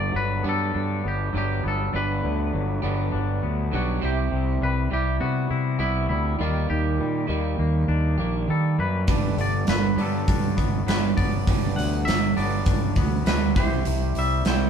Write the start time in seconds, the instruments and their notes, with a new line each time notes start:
Already playing: fingered electric bass G1, overdriven electric guitar G2 D3 G3 B3 D4 G4, clean electric guitar G2 D3 D5
0.12 fingered electric bass G1, clean electric guitar F#3
0.16 clean electric guitar B4
0.42 fingered electric bass G2, clean electric guitar B3, overdriven electric guitar B3 D4 G4
0.47 overdriven electric guitar G2 D3, clean electric guitar A4
0.74 fingered electric bass G2, clean electric guitar D4
1.04 fingered electric bass G1, clean electric guitar B3 G4
1.33 fingered electric bass G1, overdriven electric guitar G2 D3 B3 D4, clean electric guitar F#3
1.37 overdriven electric guitar G4, clean electric guitar G4
1.63 fingered electric bass G1, clean electric guitar B3
1.68 clean electric guitar A4
1.93 fingered electric bass G1, clean electric guitar G2 B4, overdriven electric guitar G2 D3 B3 D4 G4
2.23 fingered electric bass D2, clean electric guitar D3
2.53 fingered electric bass G1, clean electric guitar F#3
2.82 fingered electric bass G1, overdriven electric guitar G2 D3 B3 D4 G4, clean electric guitar B3
3.12 fingered electric bass G1, clean electric guitar D4
3.43 fingered electric bass D2, clean electric guitar B3
3.71 fingered electric bass B1, overdriven electric guitar G2 D3 G3 B3 D4 G4, clean electric guitar F#3
3.75 clean electric guitar F#4
4.00 fingered electric bass C2, overdriven electric guitar C3 G3 C4 E4 G4, clean electric guitar C3
4.05 clean electric guitar G4
4.31 fingered electric bass C2, clean electric guitar C3
4.61 fingered electric bass C2, clean electric guitar G3 B4
4.90 fingered electric bass C2, overdriven electric guitar C3 G3 E4, clean electric guitar G3 G4
4.94 overdriven electric guitar G4
5.21 fingered electric bass C3, clean electric guitar B3 F#4
5.51 fingered electric bass C3, clean electric guitar E4
5.79 fingered electric bass C2, overdriven electric guitar C3 G3 E4 G4, clean electric guitar B3 E4
6.09 fingered electric bass D2, clean electric guitar G3 E4
6.39 fingered electric bass D#2, overdriven electric guitar D#3 G3 A#3 D#4 G4, clean electric guitar D#3 F4
6.70 fingered electric bass D#2, clean electric guitar D#3 G4
6.99 fingered electric bass A#2, clean electric guitar G3
7.27 fingered electric bass D#2, overdriven electric guitar D#3 G3 A#3 D#4 G4, clean electric guitar G3
7.59 fingered electric bass D#2, clean electric guitar A#3
7.88 fingered electric bass D#2, clean electric guitar D4
8.18 fingered electric bass A#1, overdriven electric guitar D#3 G3 A#3 G4, clean electric guitar A#3
8.49 fingered electric bass D#3, clean electric guitar G3 A4
8.78 fingered electric bass F#2, clean electric guitar A#3 B4
9.07 fingered electric bass G1, overdriven electric guitar G2 D3 G3 B3 D4 G4, clean electric guitar G2, kick, open hi-hat
9.38 fingered electric bass G1, clean electric guitar D3 D5, open hi-hat
9.67 fingered electric bass G1, clean electric guitar F#3 B4, snare, open hi-hat
9.97 fingered electric bass G2, overdriven electric guitar G2 D3 B3 D4 G4, clean electric guitar B3, open hi-hat
10.01 clean electric guitar A4
10.28 fingered electric bass G2, clean electric guitar D4, kick, open hi-hat
10.57 fingered electric bass G1, clean electric guitar B3, kick, open hi-hat
10.87 fingered electric bass G1, overdriven electric guitar G2 D3 B3 D4 G4, clean electric guitar F#3 B4, snare, open hi-hat
11.17 fingered electric bass G1, clean electric guitar B3 D5, kick, open hi-hat
11.47 fingered electric bass G1, overdriven electric guitar G2 D3 B3 D4, clean electric guitar G2, kick, open hi-hat
11.51 overdriven electric guitar G4
11.76 fingered electric bass D2, clean electric guitar D3 F#5, open hi-hat
12.05 fingered electric bass G1, clean electric guitar F#3 E5, snare, open hi-hat
12.36 fingered electric bass G1, overdriven electric guitar G2 D3 B3 D4 G4, clean electric guitar B3 D5, open hi-hat
12.66 fingered electric bass G1, clean electric guitar D4, kick, open hi-hat
12.96 fingered electric bass D2, clean electric guitar B3, kick, open hi-hat
13.25 fingered electric bass D2, overdriven electric guitar G2 D3 G3 B3 D4 G4, clean electric guitar F#3 B4, snare, open hi-hat
13.56 fingered electric bass C2, overdriven electric guitar C3 G3 C4 E4, clean electric guitar C3 C5, kick, open hi-hat
13.60 overdriven electric guitar G4
13.85 fingered electric bass C2, clean electric guitar C3, open hi-hat
14.15 fingered electric bass C2, clean electric guitar G3 E5, open hi-hat
14.45 fingered electric bass C2, overdriven electric guitar C3 G3 E4, clean electric guitar G3 C5, snare, open hi-hat
14.49 overdriven electric guitar G4